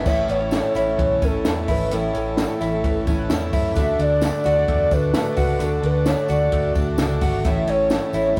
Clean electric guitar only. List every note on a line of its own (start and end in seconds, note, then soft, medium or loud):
0.00 0.11 G#3 medium
0.00 0.11 B3 medium
0.00 0.75 E4 medium
0.06 1.90 A2 medium
0.29 0.41 B3 medium
0.41 1.21 C#4 medium
0.52 1.44 A3 medium
0.75 1.67 E4 medium
0.98 2.83 E3 medium
1.22 2.13 C#4 medium
1.45 2.36 A3 medium
1.68 2.59 E4 medium
1.92 3.76 A2 medium
2.14 3.07 C#4 medium
2.37 3.30 A3 medium
2.61 3.52 E4 medium
2.84 3.76 E3 medium
3.08 3.81 C#4 medium
3.31 4.22 A3 medium
3.53 3.81 E4 medium
3.77 5.58 D3 medium
3.99 4.90 D4 medium
4.23 4.68 A3 medium
4.45 5.36 F#4 medium
4.68 5.14 A3 medium
4.92 5.81 D4 medium
5.14 6.06 A3 medium
5.37 6.28 F#4 medium
5.59 7.45 D3 medium
5.83 6.74 D4 medium
6.06 6.52 A3 medium
6.29 7.21 F#4 medium
6.52 6.98 A3 medium
6.75 7.49 D4 medium
6.99 7.91 A3 medium
7.22 7.50 F#4 medium
7.45 8.40 A2 medium
7.68 8.40 C#4 medium
7.91 8.40 A3 medium
8.14 8.40 E4 medium